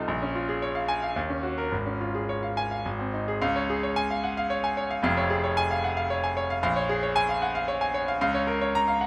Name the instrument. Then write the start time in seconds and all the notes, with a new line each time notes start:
grand piano
Already playing: C2 C3 D#4 F4 A4 D#5 F5 A5
0.08 A#1
0.22 C#4
0.35 F4
0.49 G#4
0.62 C#5
0.75 F5
0.88 G#5
1.02 F5
1.16 D#2
1.29 C#4
1.43 F#4
1.58 A#4
1.72 G#1
1.86 C#4
2.01 F4
2.15 G#4
2.29 C#5
2.43 F5
2.57 G#5
2.71 F5
2.85 G#1
2.99 C4
3.14 D#4
3.28 G#4
3.42 C#2 F5
3.56 C#5
3.69 G#4
3.83 C#5
3.96 G#5
4.11 F5
4.24 F#5
4.37 F5
4.50 C#5
4.64 G#5
4.77 C#5
4.91 F5
5.03 F1 F2 F5
5.17 C#5
5.30 G#4
5.44 C#5
5.57 G#5
5.71 F5
5.84 F#5
5.97 F5
6.10 C#5
6.24 G#5
6.37 C#5
6.50 F5
6.63 A#1 F5
6.76 C#5
6.89 G#4
7.03 C#5
7.16 G#5
7.29 F5
7.42 F#5
7.55 F5
7.68 C#5
7.81 G#5
7.94 C#5
8.08 F5
8.21 C#2 F5
8.35 C#5
8.47 A#4
8.61 C#5
8.75 A#5
8.88 F5
9.01 F#5